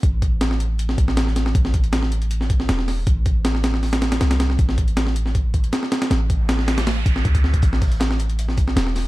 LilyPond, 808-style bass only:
\new Staff \with { instrumentName = "808-style bass" } { \clef bass \time 4/4 \key a \minor \tempo 4 = 158 a,,2~ a,,8 a,,4. | a,,2. e,,4 | a,,2. c,4 | a,,2. r4 |
a,,2~ a,,8 a,,8 d,4 | a,,2. e,,4 | }